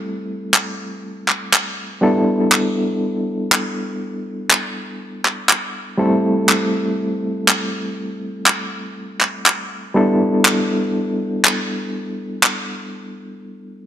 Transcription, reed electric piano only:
X:1
M:4/4
L:1/8
Q:"Swing 16ths" 1/4=121
K:Gmix
V:1 name="Reed electric piano"
[G,A,CEA]8 | [G,B,DEA]8- | [G,B,DEA]8 | [G,A,CEA]8- |
[G,A,CEA]8 | [G,B,DEA]8- | [G,B,DEA]8 |]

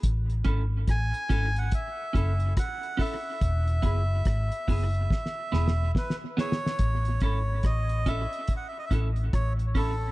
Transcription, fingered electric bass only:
X:1
M:4/4
L:1/16
Q:"Swing 16ths" 1/4=71
K:Alyd
V:1 name="Fingered electric bass" clef=bass
A,,,2 G,,,2 A,,, z G,,,2 z2 F,,,2 z4 | E,,,2 F,,,2 G,,, z F,,,2 z2 E,,,2 z4 | A,,,2 G,,,2 A,,,3 z3 A,,,2 A,,,4 |]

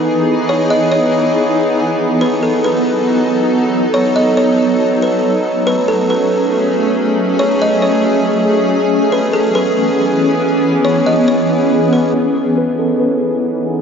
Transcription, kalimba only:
X:1
M:4/4
L:1/8
Q:1/4=139
K:F#dor
V:1 name="Kalimba"
z2 c d c4 | z2 B A B4 | z2 c d c3 B | z2 B A B4 |
z2 c d c4 | z2 B A B4 | z2 c d c3 B | z2 B A B4 |]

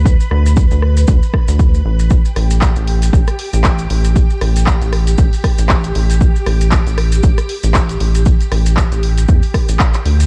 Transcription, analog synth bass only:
X:1
M:4/4
L:1/16
Q:"Swing 16ths" 1/4=117
K:Am
V:1 name="Analog synth bass" clef=bass
D,, z D,,3 D,,3 D,, z2 D,,3 A,,,2- | A,,, z A,,,3 A,,,3 A,,, z2 A,,,3 A,,,2- | A,,, z A,,,3 A,,,3 A,,, z2 A,,,3 A,,,2- | A,,, z A,,,3 A,,,3 A,,, z2 A,,,3 A,,,2- |
A,,, z A,,,3 A,,,3 E,, z2 A,,, z2 D,,2 |]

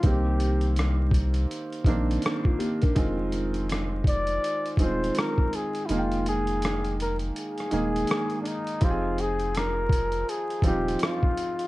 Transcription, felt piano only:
X:1
M:4/4
L:1/16
Q:"Swing 16ths" 1/4=82
K:Fdor
V:1 name="Felt piano"
[E,B,CG]6- [E,B,CG] z3 [E,B,CD]6 | [E,A,CF]6- [E,A,CF] z3 [E,A,CF]6 | [E,A,B,Fg]6- [E,A,B,Fg] z3 [E,A,B,A]6 | [F,CEGA]6- [F,CEGA] z3 [F,CEF]6 |]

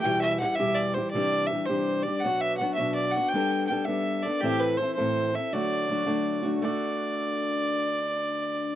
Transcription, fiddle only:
X:1
M:6/8
L:1/8
Q:3/8=110
K:Dmix
V:1 name="Fiddle"
g e f e d c | d2 e c2 d | f e f e d f | g2 g e2 d |
G B c c2 e | d4- d z | d6- | d6 |]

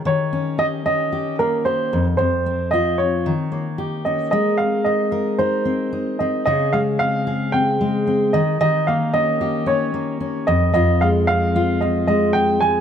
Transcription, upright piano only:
X:1
M:4/4
L:1/16
Q:"Swing 16ths" 1/4=112
K:Ab
V:1 name="Upright piano"
d4 e2 e4 B2 c3 z | c4 e2 d6 z2 e2 | e2 f2 e4 c6 e2 | e2 f2 f4 g6 e2 |
e2 f2 e4 d6 e2 | e2 f2 f4 e2 e2 g2 a2 |]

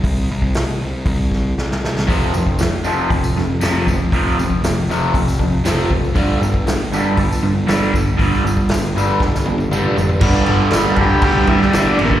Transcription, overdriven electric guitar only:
X:1
M:4/4
L:1/8
Q:1/4=118
K:Flyd
V:1 name="Overdriven electric guitar" clef=bass
z8 | [F,,C,F,] [F,,C,] [F,,C,] [F,,C,F,] [F,,C,] [F,,C,] [F,,C,F,] [F,,C,] | [F,,C,F,] [F,,C,] [F,,C,] [F,,C,F,] [F,,C,] [F,,C,] [F,,C,F,] [F,,C,] | [G,,D,G,] [G,,D,] [G,,D,] [G,,D,G,] [G,,D,] [G,,D,] [G,,D,G,] [G,,D,] |
[G,,D,G,] [G,,D,] [G,,D,] [G,,D,G,] [G,,D,] [G,,D,] [G,,D,G,] [G,,D,] | [G,,D,G,] [G,,D,G,] [G,,D,G,] [G,,D,G,] [G,,D,G,] [G,,D,G,] [G,,D,G,] [G,,D,G,] |]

